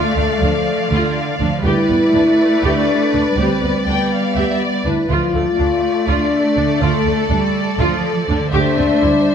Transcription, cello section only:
0, 0, Header, 1, 2, 480
1, 0, Start_track
1, 0, Tempo, 491803
1, 1609, Time_signature, 7, 3, 24, 8
1, 9124, End_track
2, 0, Start_track
2, 0, Title_t, "Cello section"
2, 0, Program_c, 0, 48
2, 0, Note_on_c, 0, 57, 42
2, 368, Note_off_c, 0, 57, 0
2, 399, Note_on_c, 0, 53, 47
2, 884, Note_off_c, 0, 53, 0
2, 884, Note_on_c, 0, 50, 47
2, 1357, Note_on_c, 0, 53, 48
2, 1367, Note_off_c, 0, 50, 0
2, 1592, Note_on_c, 0, 55, 47
2, 1598, Note_off_c, 0, 53, 0
2, 2075, Note_on_c, 0, 57, 55
2, 2081, Note_off_c, 0, 55, 0
2, 3282, Note_off_c, 0, 57, 0
2, 3289, Note_on_c, 0, 55, 36
2, 4700, Note_off_c, 0, 55, 0
2, 4965, Note_on_c, 0, 53, 37
2, 5414, Note_off_c, 0, 53, 0
2, 5441, Note_on_c, 0, 57, 42
2, 7092, Note_off_c, 0, 57, 0
2, 7128, Note_on_c, 0, 55, 45
2, 7605, Note_on_c, 0, 53, 49
2, 7609, Note_off_c, 0, 55, 0
2, 8077, Note_off_c, 0, 53, 0
2, 8082, Note_on_c, 0, 50, 48
2, 8321, Note_off_c, 0, 50, 0
2, 8325, Note_on_c, 0, 57, 54
2, 8797, Note_off_c, 0, 57, 0
2, 8808, Note_on_c, 0, 55, 47
2, 9124, Note_off_c, 0, 55, 0
2, 9124, End_track
0, 0, End_of_file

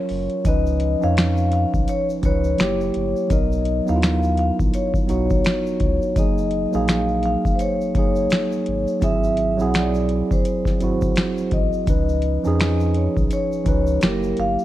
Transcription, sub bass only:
0, 0, Header, 1, 2, 480
1, 0, Start_track
1, 0, Key_signature, 6, "major"
1, 0, Tempo, 714286
1, 302, Time_signature, 4, 2, 24, 8
1, 9843, End_track
2, 0, Start_track
2, 0, Title_t, "Sub bass"
2, 0, Program_c, 0, 38
2, 67, Note_on_c, 0, 30, 80
2, 191, Note_off_c, 0, 30, 0
2, 304, Note_on_c, 0, 37, 106
2, 641, Note_off_c, 0, 37, 0
2, 692, Note_on_c, 0, 41, 88
2, 1111, Note_off_c, 0, 41, 0
2, 1170, Note_on_c, 0, 35, 94
2, 1253, Note_off_c, 0, 35, 0
2, 1502, Note_on_c, 0, 37, 90
2, 1713, Note_off_c, 0, 37, 0
2, 1749, Note_on_c, 0, 30, 104
2, 1957, Note_off_c, 0, 30, 0
2, 1989, Note_on_c, 0, 31, 89
2, 2112, Note_off_c, 0, 31, 0
2, 2222, Note_on_c, 0, 35, 108
2, 2559, Note_off_c, 0, 35, 0
2, 2613, Note_on_c, 0, 39, 82
2, 3032, Note_off_c, 0, 39, 0
2, 3091, Note_on_c, 0, 34, 103
2, 3173, Note_off_c, 0, 34, 0
2, 3427, Note_on_c, 0, 35, 93
2, 3636, Note_off_c, 0, 35, 0
2, 3904, Note_on_c, 0, 37, 90
2, 4029, Note_off_c, 0, 37, 0
2, 4143, Note_on_c, 0, 30, 108
2, 4480, Note_off_c, 0, 30, 0
2, 4532, Note_on_c, 0, 34, 91
2, 4951, Note_off_c, 0, 34, 0
2, 5011, Note_on_c, 0, 29, 95
2, 5094, Note_off_c, 0, 29, 0
2, 5345, Note_on_c, 0, 30, 88
2, 5555, Note_off_c, 0, 30, 0
2, 5832, Note_on_c, 0, 32, 87
2, 5954, Note_off_c, 0, 32, 0
2, 6065, Note_on_c, 0, 32, 97
2, 6453, Note_on_c, 0, 35, 88
2, 6463, Note_off_c, 0, 32, 0
2, 6872, Note_off_c, 0, 35, 0
2, 6932, Note_on_c, 0, 30, 95
2, 7014, Note_off_c, 0, 30, 0
2, 7267, Note_on_c, 0, 32, 91
2, 7476, Note_off_c, 0, 32, 0
2, 7744, Note_on_c, 0, 33, 90
2, 7870, Note_off_c, 0, 33, 0
2, 7983, Note_on_c, 0, 37, 104
2, 8320, Note_off_c, 0, 37, 0
2, 8370, Note_on_c, 0, 41, 80
2, 8790, Note_off_c, 0, 41, 0
2, 8851, Note_on_c, 0, 35, 97
2, 8933, Note_off_c, 0, 35, 0
2, 9184, Note_on_c, 0, 37, 104
2, 9394, Note_off_c, 0, 37, 0
2, 9428, Note_on_c, 0, 30, 96
2, 9636, Note_off_c, 0, 30, 0
2, 9666, Note_on_c, 0, 31, 92
2, 9791, Note_off_c, 0, 31, 0
2, 9843, End_track
0, 0, End_of_file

